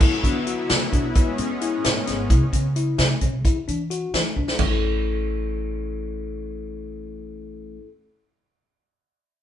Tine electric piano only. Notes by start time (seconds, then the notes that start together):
0.01 E4
0.24 D4
0.47 F#4
0.93 D4
1.16 E4
1.39 C#4
1.62 E4
2.07 C#4
2.30 E4
2.53 C#4
2.76 E4
3.21 C#4
3.45 E4
3.68 D4
3.90 F#4
4.36 D4
4.59 A3
4.63 C#4
4.67 E4 A4